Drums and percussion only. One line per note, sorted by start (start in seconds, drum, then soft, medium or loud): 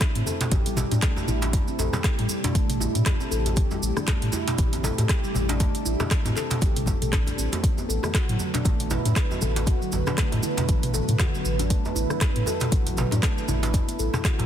0.00 kick loud
0.00 cross-stick loud
0.00 clap loud
0.00 closed hi-hat medium
0.00 muted conga medium
0.00 cabasa soft
0.15 closed hi-hat soft
0.15 high conga medium
0.26 muted conga soft
0.26 high conga medium
0.26 djembe tone medium
0.26 cabasa medium
0.41 closed hi-hat soft
0.41 mid tom medium
0.41 djembe slap medium
0.41 cabasa soft
0.52 kick loud
0.52 closed hi-hat medium
0.52 djembe tone loud
0.52 low conga medium
0.52 cabasa medium
0.66 closed hi-hat soft
0.66 muted conga medium
0.66 high conga medium
0.66 cabasa soft
0.76 mid tom medium
0.76 djembe slap medium
0.76 high conga medium
0.76 low conga loud
0.76 cabasa loud
0.91 closed hi-hat soft
0.91 muted conga soft
0.91 djembe tone medium
0.91 cabasa soft
1.02 kick loud
1.02 cross-stick loud
1.02 clap loud
1.02 closed hi-hat medium
1.02 cabasa medium
1.16 muted conga medium
1.16 djembe tone medium
1.16 cabasa soft
1.28 high conga loud
1.28 low conga medium
1.28 cabasa medium
1.42 closed hi-hat soft
1.42 djembe slap medium
1.42 cabasa soft
1.53 kick loud
1.53 closed hi-hat medium
1.53 muted conga medium
1.53 djembe tone medium
1.53 cabasa soft
1.68 cabasa soft
1.79 muted conga soft
1.79 djembe tone loud
1.79 cabasa medium
1.93 cross-stick medium
1.93 djembe slap medium
1.93 high conga medium
1.93 low conga medium
1.93 cabasa soft
2.04 kick loud
2.04 cross-stick loud
2.04 clap loud
2.04 closed hi-hat medium
2.04 cabasa medium
2.18 closed hi-hat soft
2.18 high conga medium
2.18 djembe tone medium
2.29 muted conga soft
2.29 high conga medium
2.29 cabasa loud
2.44 closed hi-hat soft
2.44 mid tom medium
2.44 djembe slap medium
2.44 djembe tone loud
2.44 cabasa soft
2.55 kick loud
2.55 closed hi-hat medium
2.55 cabasa medium
2.70 closed hi-hat soft
2.70 mid tom medium
2.70 muted conga medium
2.70 cabasa soft
2.80 high conga loud
2.80 djembe tone medium
2.80 cabasa loud
2.95 closed hi-hat soft
2.95 mid tom medium
2.95 muted conga soft
2.95 cabasa soft
3.06 kick loud
3.06 cross-stick loud
3.06 clap loud
3.06 closed hi-hat medium
3.06 djembe tone loud
3.06 cabasa medium
3.20 muted conga medium
3.20 cabasa soft
3.32 cabasa medium
3.46 closed hi-hat soft
3.46 djembe tone medium
3.46 cabasa soft
3.56 kick loud
3.56 closed hi-hat medium
3.56 muted conga medium
3.56 cabasa medium
3.71 djembe tone medium
3.71 cabasa soft
3.83 muted conga soft
3.83 cabasa medium
3.97 cross-stick medium
3.97 high conga loud
3.97 cabasa soft
4.08 kick loud
4.08 cross-stick loud
4.08 clap medium
4.08 closed hi-hat medium
4.08 djembe tone medium
4.08 cabasa medium
4.22 closed hi-hat soft
4.22 high conga medium
4.32 muted conga soft
4.32 high conga medium
4.32 djembe tone loud
4.32 cabasa loud
4.48 closed hi-hat soft
4.48 mid tom medium
4.48 djembe slap medium
4.48 cabasa soft
4.58 kick loud
4.58 closed hi-hat medium
4.58 low conga medium
4.58 cabasa medium
4.72 closed hi-hat soft
4.72 muted conga soft
4.72 high conga medium
4.72 djembe tone medium
4.72 cabasa soft
4.83 mid tom medium
4.83 djembe slap medium
4.83 high conga loud
4.83 low conga loud
4.83 cabasa loud
4.98 closed hi-hat soft
4.98 muted conga soft
4.98 djembe tone medium
4.98 cabasa soft
5.09 kick loud
5.09 cross-stick loud
5.09 clap loud
5.09 closed hi-hat medium
5.09 cabasa medium
5.24 muted conga soft
5.24 cabasa soft
5.35 high conga loud
5.35 djembe tone medium
5.35 low conga loud
5.35 cabasa medium
5.49 closed hi-hat soft
5.49 djembe slap medium
5.49 cabasa soft
5.60 kick loud
5.60 closed hi-hat medium
5.60 muted conga medium
5.60 djembe tone loud
5.60 cabasa medium
5.75 closed hi-hat soft
5.75 cabasa soft
5.86 muted conga soft
5.86 cabasa loud
6.00 cross-stick medium
6.00 djembe slap medium
6.00 djembe tone medium
6.00 high conga medium
6.00 low conga medium
6.00 cabasa soft
6.11 kick loud
6.11 cross-stick loud
6.11 clap loud
6.11 closed hi-hat medium
6.11 muted conga soft
6.11 cabasa medium
6.25 closed hi-hat soft
6.25 high conga medium
6.25 djembe tone medium
6.25 cabasa soft
6.36 clap soft
6.36 muted conga soft
6.36 high conga medium
6.36 cabasa loud
6.51 closed hi-hat soft
6.51 mid tom medium
6.51 djembe slap medium
6.51 cabasa soft
6.62 kick loud
6.62 closed hi-hat medium
6.62 djembe tone medium
6.62 cabasa medium
6.76 closed hi-hat soft
6.76 mid tom medium
6.76 muted conga soft
6.76 cabasa soft
6.86 kick medium
6.86 high conga loud
6.86 djembe tone medium
6.86 cabasa loud
7.02 closed hi-hat soft
7.02 mid tom medium
7.02 muted conga soft
7.02 cabasa soft
7.12 kick loud
7.12 cross-stick loud
7.12 clap medium
7.12 closed hi-hat medium
7.12 low conga medium
7.12 cabasa medium
7.27 closed hi-hat soft
7.27 muted conga soft
7.27 djembe tone medium
7.27 cabasa soft
7.38 cabasa medium
7.52 closed hi-hat soft
7.52 djembe tone loud
7.52 cabasa soft
7.63 kick loud
7.63 closed hi-hat medium
7.63 muted conga soft
7.63 cabasa soft
7.78 djembe tone medium
7.78 cabasa soft
7.89 muted conga soft
7.89 cabasa loud
8.03 cross-stick medium
8.03 djembe tone medium
8.03 high conga medium
8.03 cabasa soft
8.14 kick loud
8.14 cross-stick loud
8.14 clap medium
8.14 closed hi-hat medium
8.14 cabasa medium
8.29 closed hi-hat soft
8.29 high conga medium
8.39 muted conga soft
8.39 djembe tone medium
8.39 high conga medium
8.39 cabasa medium
8.54 closed hi-hat soft
8.54 mid tom medium
8.54 djembe slap medium
8.54 cabasa soft
8.65 kick loud
8.65 closed hi-hat medium
8.65 djembe tone medium
8.65 low conga medium
8.65 cabasa soft
8.80 closed hi-hat soft
8.80 muted conga soft
8.80 high conga medium
8.80 cabasa soft
8.90 mid tom medium
8.90 djembe slap medium
8.90 high conga medium
8.90 low conga loud
8.90 cabasa medium
9.05 closed hi-hat soft
9.05 muted conga soft
9.05 djembe tone medium
9.05 cabasa soft
9.16 kick loud
9.16 cross-stick loud
9.16 clap loud
9.16 closed hi-hat medium
9.16 cabasa medium
9.31 muted conga soft
9.31 djembe tone medium
9.31 cabasa soft
9.41 high conga loud
9.41 low conga medium
9.41 cabasa medium
9.56 closed hi-hat soft
9.56 djembe slap medium
9.56 cabasa soft
9.67 kick loud
9.67 closed hi-hat medium
9.67 muted conga medium
9.67 djembe tone medium
9.67 cabasa medium
9.82 cabasa soft
9.92 muted conga soft
9.92 djembe tone medium
9.92 cabasa medium
10.06 cross-stick medium
10.06 djembe slap medium
10.06 high conga medium
10.06 low conga medium
10.06 cabasa soft
10.18 kick loud
10.18 cross-stick loud
10.18 clap loud
10.18 closed hi-hat medium
10.18 cabasa medium
10.32 closed hi-hat soft
10.32 djembe tone medium
10.32 high conga medium
10.43 muted conga soft
10.43 high conga medium
10.43 cabasa loud
10.57 closed hi-hat soft
10.57 mid tom medium
10.57 djembe slap medium
10.57 djembe tone loud
10.57 cabasa soft
10.69 kick loud
10.69 closed hi-hat medium
10.69 cabasa soft
10.83 closed hi-hat soft
10.83 mid tom loud
10.83 muted conga soft
10.83 cabasa soft
10.94 djembe tone medium
10.94 high conga medium
10.94 cabasa medium
11.08 closed hi-hat soft
11.08 mid tom medium
11.08 muted conga soft
11.08 cabasa soft
11.19 kick loud
11.19 cross-stick loud
11.19 clap loud
11.19 closed hi-hat medium
11.19 djembe tone loud
11.19 cabasa soft
11.34 muted conga medium
11.34 cabasa soft
11.45 cabasa medium
11.59 closed hi-hat soft
11.59 djembe tone medium
11.59 cabasa soft
11.70 kick loud
11.70 closed hi-hat medium
11.70 muted conga medium
11.70 cabasa medium
11.85 djembe tone medium
11.85 cabasa soft
11.95 muted conga soft
11.95 cabasa medium
12.10 cross-stick medium
12.10 high conga medium
12.10 cabasa soft
12.21 kick loud
12.21 cross-stick loud
12.21 clap loud
12.21 closed hi-hat medium
12.21 muted conga medium
12.21 djembe tone medium
12.21 cabasa medium
12.36 closed hi-hat soft
12.36 high conga medium
12.46 muted conga soft
12.46 high conga medium
12.46 djembe tone medium
12.46 cabasa medium
12.60 closed hi-hat soft
12.60 mid tom medium
12.60 djembe slap medium
12.60 cabasa soft
12.71 kick loud
12.71 closed hi-hat medium
12.71 low conga medium
12.71 cabasa medium
12.86 closed hi-hat soft
12.86 muted conga soft
12.86 djembe tone medium
12.86 high conga medium
12.86 cabasa soft
12.97 mid tom medium
12.97 djembe slap medium
12.97 high conga medium
12.97 low conga loud
12.97 cabasa medium
13.11 closed hi-hat soft
13.11 muted conga soft
13.11 djembe tone medium
13.11 cabasa soft
13.23 kick loud
13.23 cross-stick loud
13.23 clap loud
13.23 closed hi-hat medium
13.23 cabasa medium
13.38 muted conga medium
13.38 cabasa soft
13.48 high conga loud
13.48 djembe tone medium
13.48 low conga medium
13.48 cabasa medium
13.63 closed hi-hat soft
13.63 djembe slap medium
13.63 cabasa soft
13.73 kick loud
13.73 closed hi-hat medium
13.73 muted conga medium
13.73 djembe tone medium
13.73 cabasa medium
13.88 closed hi-hat soft
13.88 cabasa soft
13.99 muted conga soft
13.99 cabasa medium
14.13 cross-stick medium
14.13 djembe slap medium
14.13 high conga loud
14.13 djembe tone medium
14.13 low conga medium
14.13 cabasa soft
14.25 kick loud
14.25 cross-stick loud
14.25 clap loud
14.25 closed hi-hat medium
14.25 cabasa medium
14.39 closed hi-hat soft
14.39 high conga medium
14.39 djembe tone loud